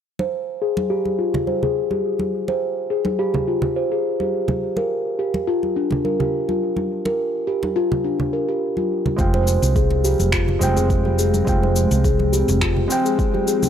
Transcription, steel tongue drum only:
X:1
M:4/4
L:1/16
Q:"Swing 16ths" 1/4=105
K:Fm
V:1 name="Steel tongue drum"
z c z2 A z G z F2 c A z G3- | G c z2 A z G z F2 c A z G3 | z B z2 G z F z =D2 B G z F3- | F B z2 G z F z =D2 B G z F3 |
z c z2 A z G z F2 c A z G A z | z c z2 A z G z F2 c A z G A z |]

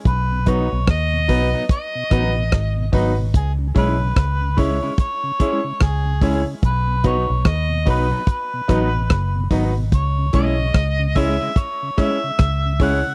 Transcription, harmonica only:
X:1
M:4/4
L:1/16
Q:"Swing 16ths" 1/4=73
K:C#m
V:1 name="Harmonica"
B2 c2 d4 d6 z2 | G2 B4 c2 c4 G3 z | B2 c2 d2 B2 B6 z2 | c2 d4 e2 c2 e4 f2 |]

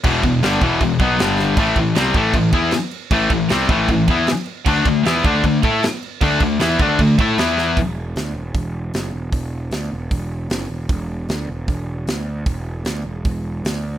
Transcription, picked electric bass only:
X:1
M:4/4
L:1/8
Q:1/4=154
K:Dmix
V:1 name="Picked electric bass" clef=bass
E,,, E,,, G,,, E,,, E,,, B,,, G,,,2 | A,,, A,,, C,, A,,, A,,, E,, z2 | A,,, A,,, C,, A,,, A,,, E,, z2 | D,, D,, E,, D,, D,, A,, z2 |
D,, D,, E,, D,, D,, A,, E,,2 | E,,,2 D,, E,,, E,,,2 F,,, E,,, | E,,,2 D,, E,,, E,,,2 F,,, E,,, | E,,,2 D,, E,,, E,,,2 D,,2 |
E,,,2 D,, E,,, E,,,2 D,,2 |]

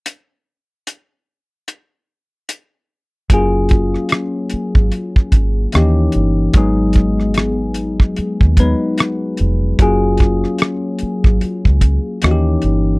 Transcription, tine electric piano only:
X:1
M:4/4
L:1/8
Q:"Swing 16ths" 1/4=74
K:F#
V:1 name="Tine electric piano"
z8 | [F,A,CEG]6 [=E,A,CD=G]2 | [F,G,B,DG]4- [F,G,B,DG] [F,G,B,DB]3 | [F,A,CEG]6 [=E,A,CDF=G]2 |]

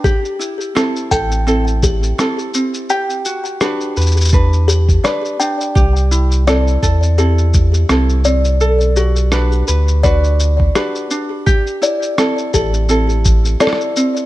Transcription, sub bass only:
X:1
M:4/4
L:1/8
Q:"Swing 16ths" 1/4=84
K:Ador
V:1 name="Sub bass" clef=bass
z3 A,,,3 z2 | z3 E,,3 z2 | C,,3 E,,3 C,,2 | B,,,3 D,,3 z2 |
z3 A,,,3 z2 |]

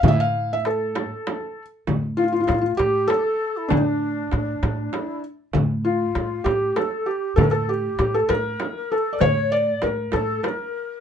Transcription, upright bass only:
X:1
M:6/8
L:1/8
Q:3/8=65
K:none
V:1 name="Upright bass" clef=bass
A,,4 z2 | A,,2 A,, A,, z2 | A,,2 A,, A,, z2 | A,,2 A,, A,, z2 |
A,,2 A,, A,, z2 | A,,2 A,, A,, z2 |]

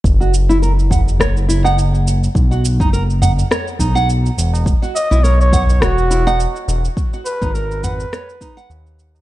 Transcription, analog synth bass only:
X:1
M:4/4
L:1/16
Q:"Swing 16ths" 1/4=104
K:B
V:1 name="Analog synth bass" clef=bass
F,,,12- F,,,3 z | B,,,3 F,,,4 z3 B,,,3 z E,,,2 | z3 B,,,4- B,,, E,,,4 z2 E,,, z | z3 G,,,4 z4 z D,,3 z |]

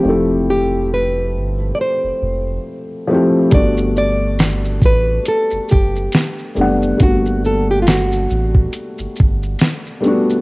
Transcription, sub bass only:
X:1
M:4/4
L:1/16
Q:"Swing 16ths" 1/4=69
K:G
V:1 name="Sub bass" clef=bass
=F,,,6 G,,,2 z F,,, F,,,2 z4 | G,,,6 A,,,2 z F,,, F,,,2 z2 F,,,2 | G,,,6 A,,,2 z G,,, G,,,2 z4 |]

